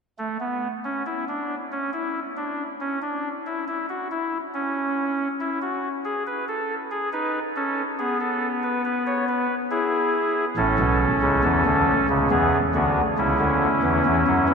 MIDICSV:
0, 0, Header, 1, 2, 480
1, 0, Start_track
1, 0, Key_signature, 3, "major"
1, 0, Tempo, 867052
1, 103, Time_signature, 3, 2, 24, 8
1, 8049, End_track
2, 0, Start_track
2, 0, Title_t, "Pipe organ"
2, 0, Program_c, 0, 19
2, 101, Note_on_c, 0, 57, 63
2, 206, Note_off_c, 0, 57, 0
2, 222, Note_on_c, 0, 59, 61
2, 373, Note_off_c, 0, 59, 0
2, 467, Note_on_c, 0, 61, 67
2, 571, Note_off_c, 0, 61, 0
2, 587, Note_on_c, 0, 64, 64
2, 691, Note_off_c, 0, 64, 0
2, 710, Note_on_c, 0, 62, 62
2, 859, Note_off_c, 0, 62, 0
2, 952, Note_on_c, 0, 61, 68
2, 1054, Note_off_c, 0, 61, 0
2, 1069, Note_on_c, 0, 64, 74
2, 1218, Note_off_c, 0, 64, 0
2, 1310, Note_on_c, 0, 62, 63
2, 1460, Note_off_c, 0, 62, 0
2, 1552, Note_on_c, 0, 61, 72
2, 1656, Note_off_c, 0, 61, 0
2, 1671, Note_on_c, 0, 62, 69
2, 1821, Note_off_c, 0, 62, 0
2, 1917, Note_on_c, 0, 64, 72
2, 2019, Note_off_c, 0, 64, 0
2, 2036, Note_on_c, 0, 64, 71
2, 2138, Note_off_c, 0, 64, 0
2, 2154, Note_on_c, 0, 66, 71
2, 2257, Note_off_c, 0, 66, 0
2, 2276, Note_on_c, 0, 64, 69
2, 2424, Note_off_c, 0, 64, 0
2, 2514, Note_on_c, 0, 61, 76
2, 2924, Note_off_c, 0, 61, 0
2, 2991, Note_on_c, 0, 64, 69
2, 3094, Note_off_c, 0, 64, 0
2, 3109, Note_on_c, 0, 66, 71
2, 3257, Note_off_c, 0, 66, 0
2, 3349, Note_on_c, 0, 68, 73
2, 3451, Note_off_c, 0, 68, 0
2, 3471, Note_on_c, 0, 71, 77
2, 3572, Note_off_c, 0, 71, 0
2, 3588, Note_on_c, 0, 69, 70
2, 3736, Note_off_c, 0, 69, 0
2, 3826, Note_on_c, 0, 68, 80
2, 3929, Note_off_c, 0, 68, 0
2, 3944, Note_on_c, 0, 63, 67
2, 3946, Note_on_c, 0, 71, 91
2, 4093, Note_off_c, 0, 63, 0
2, 4094, Note_off_c, 0, 71, 0
2, 4185, Note_on_c, 0, 61, 60
2, 4186, Note_on_c, 0, 69, 64
2, 4333, Note_off_c, 0, 61, 0
2, 4333, Note_off_c, 0, 69, 0
2, 4423, Note_on_c, 0, 68, 78
2, 4424, Note_on_c, 0, 59, 65
2, 4526, Note_off_c, 0, 68, 0
2, 4541, Note_on_c, 0, 69, 74
2, 4689, Note_off_c, 0, 69, 0
2, 4778, Note_on_c, 0, 71, 80
2, 4882, Note_off_c, 0, 71, 0
2, 4900, Note_on_c, 0, 71, 85
2, 5003, Note_off_c, 0, 71, 0
2, 5018, Note_on_c, 0, 73, 76
2, 5121, Note_off_c, 0, 73, 0
2, 5139, Note_on_c, 0, 71, 85
2, 5245, Note_off_c, 0, 59, 0
2, 5287, Note_off_c, 0, 71, 0
2, 5374, Note_on_c, 0, 64, 72
2, 5375, Note_on_c, 0, 68, 80
2, 5786, Note_off_c, 0, 64, 0
2, 5787, Note_off_c, 0, 68, 0
2, 5851, Note_on_c, 0, 45, 76
2, 5851, Note_on_c, 0, 61, 73
2, 5852, Note_on_c, 0, 33, 87
2, 5852, Note_on_c, 0, 69, 70
2, 5956, Note_off_c, 0, 33, 0
2, 5956, Note_off_c, 0, 45, 0
2, 5972, Note_on_c, 0, 35, 80
2, 5972, Note_on_c, 0, 47, 81
2, 6122, Note_off_c, 0, 35, 0
2, 6122, Note_off_c, 0, 47, 0
2, 6211, Note_on_c, 0, 37, 80
2, 6214, Note_on_c, 0, 49, 81
2, 6317, Note_off_c, 0, 37, 0
2, 6318, Note_off_c, 0, 49, 0
2, 6331, Note_on_c, 0, 52, 88
2, 6332, Note_on_c, 0, 40, 90
2, 6437, Note_off_c, 0, 40, 0
2, 6437, Note_off_c, 0, 52, 0
2, 6450, Note_on_c, 0, 38, 85
2, 6450, Note_on_c, 0, 50, 88
2, 6602, Note_off_c, 0, 38, 0
2, 6602, Note_off_c, 0, 50, 0
2, 6681, Note_off_c, 0, 61, 0
2, 6681, Note_off_c, 0, 69, 0
2, 6693, Note_on_c, 0, 37, 80
2, 6694, Note_on_c, 0, 49, 91
2, 6799, Note_off_c, 0, 37, 0
2, 6799, Note_off_c, 0, 49, 0
2, 6811, Note_on_c, 0, 40, 91
2, 6811, Note_on_c, 0, 52, 85
2, 6812, Note_on_c, 0, 59, 74
2, 6812, Note_on_c, 0, 68, 74
2, 6962, Note_off_c, 0, 40, 0
2, 6963, Note_off_c, 0, 52, 0
2, 6963, Note_off_c, 0, 59, 0
2, 6963, Note_off_c, 0, 68, 0
2, 7054, Note_on_c, 0, 66, 68
2, 7055, Note_on_c, 0, 38, 73
2, 7055, Note_on_c, 0, 50, 77
2, 7055, Note_on_c, 0, 59, 61
2, 7205, Note_off_c, 0, 50, 0
2, 7205, Note_off_c, 0, 59, 0
2, 7205, Note_off_c, 0, 66, 0
2, 7206, Note_off_c, 0, 38, 0
2, 7296, Note_on_c, 0, 64, 65
2, 7297, Note_on_c, 0, 37, 75
2, 7297, Note_on_c, 0, 61, 71
2, 7298, Note_on_c, 0, 49, 82
2, 7401, Note_off_c, 0, 37, 0
2, 7402, Note_off_c, 0, 49, 0
2, 7415, Note_on_c, 0, 38, 80
2, 7416, Note_on_c, 0, 50, 75
2, 7566, Note_off_c, 0, 38, 0
2, 7566, Note_off_c, 0, 50, 0
2, 7655, Note_on_c, 0, 40, 74
2, 7655, Note_on_c, 0, 52, 82
2, 7760, Note_off_c, 0, 40, 0
2, 7761, Note_off_c, 0, 52, 0
2, 7779, Note_on_c, 0, 40, 95
2, 7780, Note_on_c, 0, 52, 81
2, 7883, Note_off_c, 0, 40, 0
2, 7884, Note_off_c, 0, 52, 0
2, 7898, Note_on_c, 0, 54, 77
2, 7899, Note_on_c, 0, 42, 84
2, 8002, Note_off_c, 0, 54, 0
2, 8003, Note_off_c, 0, 42, 0
2, 8019, Note_on_c, 0, 40, 76
2, 8019, Note_on_c, 0, 52, 84
2, 8049, Note_off_c, 0, 40, 0
2, 8049, Note_off_c, 0, 52, 0
2, 8049, Note_off_c, 0, 61, 0
2, 8049, Note_off_c, 0, 64, 0
2, 8049, End_track
0, 0, End_of_file